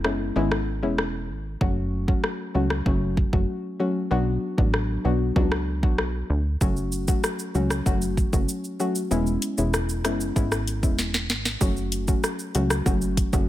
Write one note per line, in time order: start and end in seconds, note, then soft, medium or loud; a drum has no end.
0.04 0.32 F#1 medium
0.04 0.33 G#3 medium
0.04 0.34 B3 medium
0.04 0.34 C#4 medium
0.04 0.34 E4 medium
0.04 cross-stick medium
0.36 0.84 G#1 medium
0.36 0.54 G#3 loud
0.36 0.54 B3 medium
0.36 0.55 C#4 medium
0.36 0.55 E4 loud
0.52 cross-stick medium
0.83 1.31 E1 medium
0.83 1.01 G#3 medium
0.83 1.01 B3 medium
0.83 1.01 C#4 medium
0.83 1.02 E4 medium
0.98 cross-stick medium
1.30 1.57 G#1 loud
1.61 2.15 F#1 loud
1.61 2.04 F#3 loud
1.61 2.04 A3 medium
1.61 2.04 C#4 medium
1.61 2.04 F#4 loud
1.61 kick loud
2.08 2.26 F#3 medium
2.08 2.26 A3 medium
2.08 2.26 C#4 medium
2.08 2.27 F#4 medium
2.08 kick medium
2.24 cross-stick medium
2.54 2.82 C#2 medium
2.54 2.73 F#3 medium
2.54 2.73 A3 medium
2.54 2.73 C#4 medium
2.54 2.73 F#4 medium
2.70 cross-stick medium
2.86 3.26 F#1 loud
2.86 3.29 F#3 loud
2.86 3.29 A3 medium
2.86 3.29 C#4 medium
2.86 3.29 F#4 loud
2.86 kick medium
3.17 kick medium
3.33 3.46 F#1 medium
3.33 3.51 F#3 medium
3.33 3.51 A3 medium
3.33 3.51 C#4 medium
3.33 3.52 F#4 medium
3.33 kick medium
3.80 3.98 F#3 medium
3.80 3.98 A3 medium
3.80 3.98 C#4 medium
3.80 3.98 F#4 medium
4.11 4.38 B1 loud
4.11 4.54 F#3 loud
4.11 4.54 B3 medium
4.11 4.54 D4 medium
4.11 4.54 F#4 loud
4.58 4.98 A1 medium
4.58 5.01 F#3 medium
4.58 5.01 B3 medium
4.58 5.01 D4 medium
4.58 5.01 F#4 medium
4.58 kick medium
4.74 cross-stick medium
5.04 5.32 B1 medium
5.04 5.33 F#3 medium
5.04 5.34 B3 medium
5.04 5.34 D4 medium
5.04 5.34 F#4 medium
5.36 5.85 C#2 medium
5.36 5.54 F#3 loud
5.36 5.55 B3 medium
5.36 5.55 D4 medium
5.36 5.55 F#4 loud
5.36 kick medium
5.52 cross-stick medium
5.83 6.23 B1 medium
5.83 6.01 F#3 medium
5.83 6.01 B3 medium
5.83 6.02 D4 medium
5.83 6.02 F#4 medium
5.83 kick medium
5.98 cross-stick medium
6.30 6.57 D2 loud
6.61 7.15 F#1 loud
6.61 7.04 F#3 loud
6.61 7.04 A3 medium
6.61 7.04 C#4 medium
6.61 7.04 F#4 loud
6.61 kick loud
6.61 shaker medium
6.77 shaker soft
6.92 shaker medium
7.08 7.26 F#3 medium
7.08 7.26 A3 medium
7.08 7.27 C#4 medium
7.08 7.27 F#4 medium
7.08 kick medium
7.08 shaker medium
7.24 cross-stick medium
7.24 shaker medium
7.39 shaker medium
7.55 7.82 C#2 medium
7.55 7.73 F#3 medium
7.55 7.73 A3 medium
7.55 7.73 C#4 medium
7.55 7.74 F#4 medium
7.55 shaker soft
7.70 cross-stick medium
7.70 shaker medium
7.86 8.27 F#1 loud
7.86 8.29 F#3 loud
7.86 8.29 A3 medium
7.86 8.29 C#4 medium
7.86 8.29 F#4 loud
7.86 kick medium
7.86 shaker medium
8.02 shaker medium
8.17 kick medium
8.17 shaker soft
8.33 8.46 F#1 loud
8.33 8.51 F#3 medium
8.33 8.51 A3 medium
8.33 8.52 C#4 medium
8.33 8.52 F#4 medium
8.33 kick medium
8.33 shaker medium
8.49 shaker medium
8.64 shaker soft
8.80 8.98 F#3 medium
8.80 8.98 A3 medium
8.80 8.98 C#4 medium
8.80 8.98 F#4 medium
8.80 shaker medium
8.95 shaker medium
9.11 9.38 E1 loud
9.11 9.54 G#3 medium
9.11 9.54 B3 medium
9.11 9.54 C#4 medium
9.11 9.54 E4 loud
9.11 shaker medium
9.27 shaker soft
9.42 closed hi-hat medium
9.42 shaker medium
9.58 10.06 E1 medium
9.58 10.01 G#3 medium
9.58 10.01 B3 medium
9.58 10.01 C#4 medium
9.58 10.01 E4 medium
9.58 shaker medium
9.74 cross-stick medium
9.74 shaker medium
9.89 shaker medium
10.05 10.32 F#1 medium
10.05 10.33 G#3 medium
10.05 10.34 B3 medium
10.05 10.34 C#4 medium
10.05 10.34 E4 medium
10.05 cross-stick medium
10.05 closed hi-hat medium
10.05 shaker soft
10.20 shaker medium
10.36 10.85 G#1 medium
10.36 10.54 G#3 loud
10.36 10.54 B3 medium
10.36 10.55 C#4 medium
10.36 10.55 E4 loud
10.36 kick loud
10.36 shaker medium
10.52 cross-stick medium
10.52 shaker medium
10.68 closed hi-hat medium
10.68 shaker soft
10.83 11.31 E1 medium
10.83 11.01 G#3 medium
10.83 11.01 B3 medium
10.83 11.01 C#4 medium
10.83 11.02 E4 medium
10.83 kick medium
10.83 shaker medium
10.99 snare medium
10.99 shaker medium
11.14 snare medium
11.14 shaker soft
11.30 11.57 G#1 loud
11.30 snare medium
11.30 closed hi-hat medium
11.30 shaker medium
11.45 snare medium
11.45 shaker medium
11.61 12.15 F#1 loud
11.61 12.04 F#3 medium
11.61 12.04 A3 medium
11.61 12.04 C#4 medium
11.61 12.04 F#4 loud
11.61 kick loud
11.61 high bongo medium
11.61 shaker medium
11.77 shaker soft
11.92 closed hi-hat medium
11.92 shaker medium
12.08 12.26 F#3 medium
12.08 12.26 A3 medium
12.08 12.27 C#4 medium
12.08 12.27 F#4 medium
12.08 kick medium
12.08 shaker medium
12.24 cross-stick medium
12.24 shaker medium
12.39 shaker medium
12.55 12.82 C#2 medium
12.55 12.73 F#3 medium
12.55 12.73 A3 medium
12.55 12.73 C#4 medium
12.55 12.74 F#4 medium
12.55 closed hi-hat medium
12.55 high bongo soft
12.55 shaker soft
12.70 cross-stick medium
12.70 shaker medium
12.86 13.26 F#1 loud
12.86 13.29 F#3 loud
12.86 13.29 A3 loud
12.86 13.29 C#4 medium
12.86 13.29 F#4 loud
12.86 kick medium
12.86 high bongo medium
12.86 shaker medium
13.02 shaker medium
13.17 kick medium
13.17 closed hi-hat medium
13.17 shaker soft
13.33 13.46 F#1 medium
13.33 13.49 F#3 medium
13.33 13.49 A3 medium
13.33 13.49 C#4 medium
13.33 13.49 F#4 medium
13.33 kick medium
13.33 high bongo medium
13.33 shaker medium